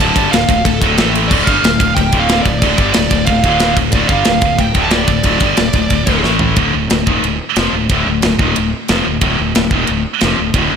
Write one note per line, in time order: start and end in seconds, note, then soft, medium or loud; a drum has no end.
0.00 0.15 D1 medium
0.00 0.15 D2 loud
0.00 0.15 A2 loud
0.00 0.15 D3 loud
0.00 0.29 A5 loud
0.00 ride loud
0.15 0.31 G1 loud
0.15 0.30 G2 medium
0.15 0.31 D3 loud
0.15 0.32 G3 loud
0.15 kick loud
0.15 ride medium
0.30 0.48 D1 medium
0.30 0.44 D2 medium
0.30 0.45 A2 medium
0.30 0.62 F5 loud
0.30 snare loud
0.30 ride loud
0.34 0.47 D2 medium
0.49 0.64 D1 medium
0.49 0.62 D2 medium
0.49 0.62 A2 medium
0.49 kick loud
0.49 ride medium
0.65 0.81 D1 medium
0.65 0.78 D2 medium
0.65 0.79 A2 medium
0.65 1.11 A4 medium
0.65 kick loud
0.65 ride loud
0.81 0.97 D1 loud
0.81 0.97 D2 medium
0.81 0.96 A2 medium
0.81 0.97 D3 loud
0.81 kick loud
0.81 ride medium
0.85 1.00 A2 medium
0.97 1.29 A1 medium
0.97 1.30 A2 medium
0.97 1.31 E3 loud
0.97 1.31 A3 medium
0.97 snare loud
0.97 ride medium
1.15 ride medium
1.28 1.46 D1 medium
1.28 1.47 D2 loud
1.28 1.47 A2 loud
1.28 1.46 D3 medium
1.28 1.44 D5 loud
1.28 kick loud
1.28 crash loud
1.44 1.63 G1 loud
1.44 1.63 G2 medium
1.44 1.63 D3 loud
1.44 1.96 F5 loud
1.44 kick medium
1.44 ride medium
1.48 1.64 G3 loud
1.63 1.79 D1 medium
1.63 1.77 D2 medium
1.63 1.77 A2 medium
1.63 snare loud
1.63 ride loud
1.80 1.95 D1 medium
1.80 1.94 D2 medium
1.80 1.94 A2 medium
1.80 kick loud
1.80 ride medium
1.95 2.12 D1 medium
1.95 2.10 D2 medium
1.95 2.10 A2 medium
1.95 2.18 G5 medium
1.95 kick medium
1.95 ride loud
2.12 2.44 D1 loud
2.12 2.45 D2 medium
2.12 2.45 A2 medium
2.12 2.45 D3 loud
2.12 kick loud
2.12 ride medium
2.20 2.42 F5 medium
2.29 snare loud
2.29 ride medium
2.42 2.61 D1 medium
2.42 2.59 D2 medium
2.42 2.59 A2 medium
2.42 2.58 D5 medium
2.42 kick loud
2.42 ride medium
2.59 2.78 D1 medium
2.59 2.78 D2 medium
2.59 2.79 A2 medium
2.59 2.91 D5 medium
2.59 kick loud
2.59 ride loud
2.64 2.78 D3 loud
2.78 2.94 G1 loud
2.78 2.95 G2 medium
2.78 2.95 D3 medium
2.78 2.95 G3 loud
2.78 kick loud
2.78 ride medium
2.93 3.10 D1 medium
2.93 3.09 D2 medium
2.93 3.09 A2 medium
2.93 3.26 D5 loud
2.93 snare loud
2.93 ride loud
3.11 3.27 D1 medium
3.11 3.25 D2 medium
3.11 3.25 A2 medium
3.11 kick medium
3.11 ride medium
3.26 3.43 D1 medium
3.26 3.41 D2 medium
3.26 3.41 A2 medium
3.26 3.73 F5 medium
3.26 kick medium
3.26 ride loud
3.44 3.75 D1 loud
3.44 3.77 D2 medium
3.44 3.77 A2 loud
3.44 3.77 D3 medium
3.44 kick loud
3.44 ride medium
3.59 snare loud
3.59 ride medium
3.77 3.92 D1 medium
3.77 3.91 D2 medium
3.77 3.91 A2 medium
3.77 kick loud
3.77 ride medium
3.92 4.08 D1 loud
3.92 4.08 D2 loud
3.92 4.09 A2 loud
3.92 4.08 D3 loud
3.92 4.08 D5 loud
3.92 kick loud
3.92 ride loud
4.09 4.25 G1 loud
4.09 4.25 G2 loud
4.09 4.26 D3 medium
4.09 4.26 G3 loud
4.09 4.60 F5 loud
4.09 kick loud
4.09 ride medium
4.25 4.41 D1 medium
4.25 4.40 D2 medium
4.25 4.40 A2 medium
4.25 snare loud
4.25 ride loud
4.41 4.58 D1 medium
4.41 4.56 D2 medium
4.41 4.56 A2 medium
4.41 kick loud
4.41 ride medium
4.58 4.75 D1 medium
4.58 4.72 D2 medium
4.58 4.72 A2 medium
4.58 4.82 G5 medium
4.58 kick medium
4.58 ride medium
4.74 5.06 D1 medium
4.74 5.07 D2 medium
4.74 5.07 A2 medium
4.74 5.08 D3 medium
4.74 kick loud
4.74 ride medium
4.83 4.92 A5 loud
4.90 6.20 D5 medium
4.90 snare loud
4.90 ride medium
5.07 5.24 D1 medium
5.07 5.22 D2 medium
5.07 5.22 A2 medium
5.07 kick loud
5.07 ride medium
5.23 5.40 D1 loud
5.23 5.40 D2 loud
5.23 5.40 A2 loud
5.23 5.40 D3 loud
5.23 kick loud
5.23 ride loud
5.40 5.57 G1 medium
5.40 5.56 G2 medium
5.40 5.56 D3 loud
5.40 5.58 G3 medium
5.40 kick loud
5.40 ride medium
5.57 5.73 D1 medium
5.57 5.71 D2 medium
5.57 5.71 A2 medium
5.57 snare loud
5.57 ride loud
5.73 5.90 D1 medium
5.73 5.88 D2 medium
5.73 5.88 A2 medium
5.73 kick medium
5.73 ride medium
5.90 6.06 D1 medium
5.90 6.04 D2 medium
5.90 6.04 A2 medium
5.90 kick loud
5.90 ride loud
6.06 6.23 D1 medium
6.06 6.22 D2 medium
6.06 6.21 A2 medium
6.06 6.23 D3 medium
6.06 kick loud
6.06 ride medium
6.22 6.55 A1 medium
6.22 6.56 A2 medium
6.22 6.56 E3 medium
6.22 6.56 A3 medium
6.22 snare medium
6.39 floor tom medium
6.56 6.73 D1 medium
6.56 6.72 D2 medium
6.56 6.72 A2 medium
6.56 6.74 D3 medium
6.56 kick loud
6.56 ride bell medium
6.73 6.90 D1 medium
6.73 6.87 D2 medium
6.73 6.87 A2 medium
6.90 7.06 D1 medium
6.90 7.03 D2 medium
6.90 7.04 A2 medium
6.90 snare loud
6.90 ride bell medium
7.07 7.22 D#1 medium
7.07 7.23 D#2 medium
7.07 7.23 A#2 medium
7.07 7.24 D#3 loud
7.07 kick loud
7.23 7.39 D1 medium
7.23 7.37 D2 medium
7.23 7.38 A2 medium
7.23 ride bell medium
7.56 7.72 F1 medium
7.56 7.73 F2 medium
7.56 7.73 C3 medium
7.56 7.74 F3 loud
7.56 snare loud
7.56 ride bell medium
7.73 7.89 D1 medium
7.73 7.88 D2 medium
7.73 7.88 A2 medium
7.89 8.05 D1 medium
7.89 8.08 D2 loud
7.89 kick loud
7.89 ride bell medium
7.93 8.08 A2 loud
7.93 8.08 D3 loud
8.07 8.22 D1 medium
8.07 8.21 D2 medium
8.07 8.21 A2 medium
8.22 8.38 D1 medium
8.22 8.37 D2 medium
8.22 8.37 A2 medium
8.22 snare loud
8.22 ride bell medium
8.39 8.55 D#1 loud
8.39 8.57 D#2 medium
8.39 8.57 A#2 loud
8.39 8.57 D#3 loud
8.39 kick loud
8.56 8.72 D1 medium
8.56 8.70 D2 medium
8.56 8.70 A2 medium
8.56 ride bell medium
8.88 9.05 F1 loud
8.88 9.05 F2 medium
8.88 9.06 C3 loud
8.88 9.06 F3 loud
8.88 snare loud
8.88 ride bell medium
9.06 9.21 D1 medium
9.06 9.19 D2 medium
9.06 9.19 A2 medium
9.21 9.38 D1 medium
9.21 9.38 D2 loud
9.21 9.38 A2 loud
9.21 9.38 D3 loud
9.21 kick loud
9.21 ride bell medium
9.40 9.55 D1 medium
9.40 9.53 D2 medium
9.40 9.53 A2 medium
9.55 9.71 D1 medium
9.55 9.69 D2 medium
9.55 9.70 A2 medium
9.55 snare loud
9.55 ride bell medium
9.71 9.87 D#1 medium
9.71 9.88 D#2 loud
9.71 9.89 A#2 loud
9.71 9.89 D#3 loud
9.71 kick loud
9.87 10.04 D1 medium
9.87 10.03 D2 medium
9.87 10.03 A2 medium
9.87 ride bell medium
10.21 10.37 F1 medium
10.21 10.38 F2 medium
10.21 10.39 C3 medium
10.21 10.39 F3 loud
10.21 snare medium
10.21 ride bell medium
10.39 10.54 D1 medium
10.39 10.53 D2 medium
10.39 10.52 A2 medium
10.54 10.70 D1 loud
10.54 10.72 D2 medium
10.54 10.72 A2 loud
10.54 kick loud
10.54 ride bell medium
10.59 10.73 D3 loud
10.71 10.76 D1 medium
10.71 10.76 D2 medium
10.71 10.76 A2 medium